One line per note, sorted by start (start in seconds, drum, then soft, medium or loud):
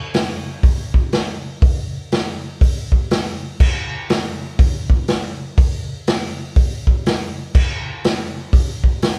0.14 snare loud
0.14 open hi-hat medium
0.63 kick loud
0.63 open hi-hat medium
0.94 kick medium
1.12 snare loud
1.12 open hi-hat medium
1.62 kick loud
1.62 open hi-hat medium
2.12 snare loud
2.12 open hi-hat medium
2.61 kick loud
2.61 open hi-hat medium
2.92 kick medium
3.11 snare loud
3.11 open hi-hat medium
3.60 kick loud
3.60 crash loud
4.10 snare loud
4.10 open hi-hat medium
4.59 kick loud
4.59 open hi-hat medium
4.90 kick medium
5.08 snare loud
5.08 open hi-hat medium
5.58 kick loud
5.58 open hi-hat medium
6.07 snare loud
6.07 open hi-hat medium
6.56 kick loud
6.56 open hi-hat medium
6.87 kick medium
7.06 snare loud
7.06 open hi-hat medium
7.55 kick loud
7.55 crash loud
8.04 snare loud
8.04 open hi-hat medium
8.53 kick loud
8.53 open hi-hat medium
8.84 kick medium
9.02 snare loud
9.02 open hi-hat medium